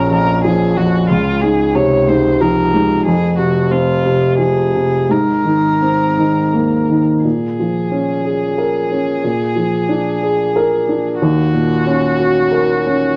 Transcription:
0.00 1.06 A#1 medium
0.00 1.10 A#1 medium
0.00 0.11 F2 soft
0.00 0.31 C#4 soft
0.00 0.11 A#4 medium
0.11 0.64 F2 soft
0.11 0.43 A#4 medium
0.44 0.97 F3 medium
0.44 0.78 G#4 medium
0.77 1.10 F2 soft
0.77 1.09 F#4 medium
1.09 3.08 C#2 medium
1.09 3.02 C#2 medium
1.09 1.43 F4 medium
1.42 1.95 G#2 soft
1.42 1.77 G#4 medium
1.75 2.27 C3 soft
1.75 2.10 C#5 medium
2.08 2.60 G#2 soft
2.08 2.42 C5 medium
2.41 2.93 F3 soft
2.41 3.05 A#4 soft
2.74 3.06 G#2 soft
3.06 5.11 F1 medium
3.06 5.06 F2 medium
3.06 3.37 G#4 medium
3.38 3.92 C3 soft
3.38 3.73 F#4 soft
3.71 4.25 C4 soft
3.71 4.39 F4 soft
4.05 4.60 C3 soft
4.39 4.95 F3 soft
4.39 5.12 G#4 soft
4.75 5.10 C3 soft
5.09 7.24 G#1 soft
5.09 7.20 G#2 soft
5.09 7.04 A#4 soft
5.45 6.03 D#3 soft
5.81 6.39 C4 soft
6.18 6.75 D#3 soft
6.53 7.10 A#3 soft
6.89 7.24 D#3 soft
7.24 9.19 A#2 soft
7.24 11.16 G#4 soft
7.60 8.12 F3 soft
7.91 8.44 C#4 soft
8.25 8.77 G#4 soft
8.58 9.10 A#4 soft
8.91 9.23 C#4 soft
9.24 11.17 A#2 soft
9.56 10.09 F3 soft
9.89 10.42 D4 soft
10.23 10.75 G#4 soft
10.56 11.08 A#4 soft
10.89 11.21 D4 soft
11.20 13.16 D#2 soft
11.20 13.16 F#4 medium
11.53 12.06 A#2 soft
11.86 12.39 C#4 soft
12.19 12.73 F#4 soft
12.52 13.07 A#4 soft
12.86 13.16 C#4 soft

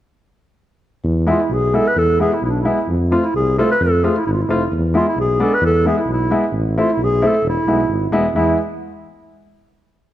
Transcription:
1.04 1.31 E2 medium
1.27 1.38 G#3 medium
1.27 1.39 B3 medium
1.27 1.39 E4 medium
1.27 1.42 F4 medium
1.41 1.55 E4 medium
1.50 1.77 B1 medium
1.50 1.77 G#4 medium
1.73 1.85 G#3 medium
1.73 1.85 B3 soft
1.73 1.85 E4 medium
1.73 1.89 A4 medium
1.87 2.00 B4 medium
1.96 2.23 E2 medium
1.96 2.20 A4 loud
2.19 2.31 G#3 medium
2.19 2.31 B3 medium
2.19 2.31 E4 medium
2.19 2.35 G#4 medium
2.34 2.44 E4 medium
2.42 2.70 B1 medium
2.42 2.49 E4 medium
2.48 2.60 D4 medium
2.59 2.89 E4 medium
2.65 2.77 G#3 medium
2.65 2.77 B3 medium
2.65 2.77 E4 medium
2.88 3.16 F2 medium
3.11 3.23 A3 medium
3.11 3.23 C4 soft
3.11 3.25 F4 medium
3.11 3.23 F4 medium
3.24 3.35 E4 medium
3.35 3.62 C2 medium
3.35 3.56 G#4 medium
3.58 3.69 A3 medium
3.58 3.69 C4 medium
3.58 3.70 F4 medium
3.58 3.68 A4 medium
3.71 3.84 B4 medium
3.80 4.08 F2 medium
3.80 4.06 A4 medium
4.04 4.15 A3 medium
4.04 4.15 C4 medium
4.04 4.15 F4 medium
4.04 4.18 G#4 medium
4.17 4.26 E4 medium
4.26 4.47 G#1 medium
4.26 4.35 E4 medium
4.33 4.43 F4 medium
4.41 4.72 E4 medium
4.48 4.69 F1 medium
4.48 4.60 A3 medium
4.48 4.60 C4 medium
4.48 4.61 F4 medium
4.72 4.99 E2 medium
4.94 5.05 G#3 medium
4.94 5.06 B3 soft
4.94 5.06 E4 medium
4.94 5.06 F4 medium
5.09 5.18 E4 medium
5.16 5.43 B1 medium
5.20 5.45 G#4 medium
5.40 5.51 G#3 medium
5.40 5.51 B3 medium
5.40 5.51 D4 medium
5.40 5.55 A4 medium
5.54 5.64 B4 medium
5.61 5.89 E2 medium
5.66 5.85 A4 medium
5.85 5.97 G#3 medium
5.85 5.97 B3 medium
5.85 5.97 E4 medium
5.85 5.97 G#4 medium
5.99 6.08 E4 medium
6.06 6.34 B1 medium
6.13 6.53 E4 medium
6.31 6.42 G#3 medium
6.31 6.42 B3 medium
6.31 6.43 E4 medium
6.52 6.80 A1 medium
6.78 6.88 A3 medium
6.78 6.88 C4 medium
6.78 6.88 E4 medium
6.78 6.94 F4 medium
6.93 7.05 E4 medium
6.97 7.25 B1 medium
7.04 7.29 G#4 medium
7.22 7.33 A3 medium
7.22 7.33 C4 medium
7.22 7.33 E4 medium
7.27 7.47 A4 medium
7.42 7.57 E1 medium
7.50 8.11 E4 medium
7.65 7.86 B1 medium
7.65 7.79 G#3 medium
7.65 7.79 B3 medium
7.65 7.79 E4 medium
7.88 8.09 G#1 medium
8.10 8.32 E1 medium
8.10 8.24 G#3 medium
8.10 8.24 B3 medium
8.10 8.24 E4 medium
8.34 8.55 E2 medium
8.34 8.57 G#3 medium
8.34 8.57 B3 medium
8.34 8.57 E4 medium

